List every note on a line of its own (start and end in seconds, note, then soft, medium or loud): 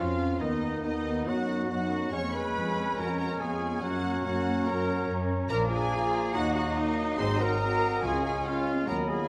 0.00 0.40 F2 medium
0.00 0.40 F3 medium
0.00 0.39 C#4 medium
0.00 0.41 C#4 medium
0.00 0.40 F4 medium
0.00 0.41 F4 medium
0.00 0.42 F4 medium
0.00 0.40 F5 medium
0.00 0.41 F5 medium
0.40 0.83 D#2 medium
0.40 0.83 D#3 medium
0.40 0.82 B3 medium
0.40 2.09 B3 medium
0.40 0.83 D#4 medium
0.40 0.84 D#4 medium
0.40 0.83 D#4 medium
0.40 0.82 D#5 medium
0.83 1.26 D#2 medium
0.83 1.29 D#3 medium
0.83 1.26 B3 medium
0.83 1.28 D#4 medium
0.83 1.26 D#4 medium
0.83 1.30 D#4 medium
0.83 1.26 D#4 medium
0.83 1.26 D#5 medium
1.26 1.68 F#2 medium
1.26 1.70 F#3 medium
1.26 1.69 D#4 medium
1.26 1.69 F#4 medium
1.26 1.70 F#4 medium
1.26 1.69 F#5 medium
1.69 2.11 F#2 medium
1.69 2.12 F#3 medium
1.69 2.12 D#4 medium
1.69 2.11 F#4 medium
1.69 2.12 F#4 medium
1.69 2.11 F#5 medium
1.69 2.12 F#5 medium
2.12 2.50 F2 medium
2.12 3.84 G#3 medium
2.12 2.54 A#3 medium
2.12 5.46 C#4 medium
2.12 2.22 G#4 medium
2.12 2.22 C#5 medium
2.12 2.33 C#5 medium
2.12 5.47 C#5 medium
2.12 3.57 G#5 medium
2.12 2.33 C#6 medium
2.12 2.34 C#6 medium
2.33 2.96 G#4 medium
2.33 2.97 B4 loud
2.33 2.97 B4 medium
2.33 2.97 B5 medium
2.33 2.98 B5 medium
2.55 2.93 F2 medium
2.55 2.97 G#3 medium
2.97 3.35 F2 medium
2.97 3.40 C#4 medium
2.97 3.07 F#4 medium
2.97 3.17 A#4 medium
2.97 3.18 A#4 medium
2.97 3.17 A#5 medium
3.18 3.29 F#4 medium
3.18 3.39 A#4 loud
3.18 3.27 A#4 medium
3.18 3.39 A#5 medium
3.39 3.77 F2 medium
3.39 3.82 B3 medium
3.39 3.82 F4 medium
3.39 3.82 G#4 medium
3.39 3.81 G#4 medium
3.39 3.81 G#5 medium
3.39 3.82 G#5 medium
3.82 4.20 F#2 medium
3.82 5.52 F#3 medium
3.82 4.66 A#3 medium
3.82 4.24 C#4 medium
3.82 4.24 F#4 medium
3.82 4.23 F#5 medium
3.82 4.24 F#5 medium
3.82 8.04 A#5 medium
4.25 4.62 F#2 medium
4.25 4.67 C#4 medium
4.25 4.66 F#4 medium
4.25 4.66 F#5 medium
4.25 4.67 F#5 medium
4.67 5.04 F#2 medium
4.67 5.50 C#4 medium
4.67 5.09 F#4 medium
4.67 5.09 A#4 medium
4.67 5.08 A#4 medium
4.67 5.09 A#5 medium
5.09 5.45 F#2 medium
5.49 5.85 A#1 medium
5.49 6.33 F3 medium
5.49 7.20 A#3 medium
5.49 5.91 D4 medium
5.49 5.69 F4 medium
5.49 5.69 A#4 medium
5.49 5.60 A#4 loud
5.49 6.32 D5 medium
5.49 5.57 A#5 loud
5.49 5.58 A#5 loud
5.70 6.32 F4 medium
5.70 6.32 G#4 medium
5.70 6.33 G#4 loud
5.70 6.32 G#5 medium
5.70 6.33 G#5 medium
5.92 6.34 F4 medium
6.33 6.69 D#2 medium
6.33 7.86 F#3 medium
6.33 6.53 D#4 loud
6.33 7.60 D#4 medium
6.33 6.54 F#4 loud
6.33 6.55 F#4 loud
6.33 8.05 D#5 medium
6.33 6.54 F#5 loud
6.33 6.42 F#5 medium
6.55 6.64 D#4 medium
6.55 6.63 F#4 medium
6.55 6.76 F#4 loud
6.55 6.63 F#5 medium
6.55 6.76 F#5 medium
6.76 7.17 A#3 medium
6.76 7.18 D#4 medium
6.76 7.19 D#4 loud
6.76 7.18 D#5 medium
7.17 7.53 G#1 medium
7.17 8.05 C4 medium
7.17 7.38 G#4 loud
7.17 7.39 C5 loud
7.17 7.40 C5 medium
7.17 7.25 C6 medium
7.17 7.40 C6 loud
7.38 8.02 F#4 medium
7.38 8.03 A#4 loud
7.38 8.01 A#5 loud
7.38 8.03 A#5 medium
7.60 8.02 C4 medium
8.03 8.38 C#2 medium
8.03 8.62 C#3 medium
8.03 8.86 G#3 medium
8.03 8.85 C#4 medium
8.03 8.71 C#4 medium
8.03 8.22 F4 loud
8.03 8.23 G#4 loud
8.03 8.23 G#4 medium
8.03 8.71 C#5 medium
8.03 8.23 G#5 loud
8.03 8.87 G#5 medium
8.03 8.23 G#5 medium
8.23 8.33 F4 medium
8.23 8.34 G#4 medium
8.23 8.45 G#4 medium
8.23 8.44 G#5 medium
8.23 8.45 G#5 medium
8.45 8.86 C#4 medium
8.45 8.86 F4 loud
8.45 8.87 F4 medium
8.45 8.87 F5 medium
8.87 9.22 D#2 medium
8.87 9.28 F#3 medium
8.87 9.28 B3 medium
8.87 8.97 F#4 medium
8.87 8.95 A#4 medium
8.87 9.08 A#4 loud
8.87 9.28 D#5 medium
8.87 8.95 A#5 medium
8.87 8.96 A#5 loud
8.87 9.28 B5 medium
9.08 9.28 F4 medium
9.08 9.28 G#4 medium
9.08 9.28 G#5 medium